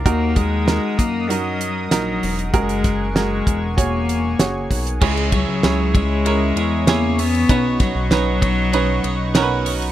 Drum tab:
CC |----------------|----------------|x---------------|----------------|
RD |----------------|----------------|-xx-x-x-x-x-x-xx|x-x-x-x-x-x-x-xx|
HH |x-x-x-x-x-x-x-ox|xxx-x-x-x-x-x-ox|--------------o-|p-------------o-|
SD |----o-------o---|--o-o-------o---|----o-------o---|--o-o-------o---|
BD |o-o---o---------|o-o---o-o-----o-|o-o---o---------|o-o---o---------|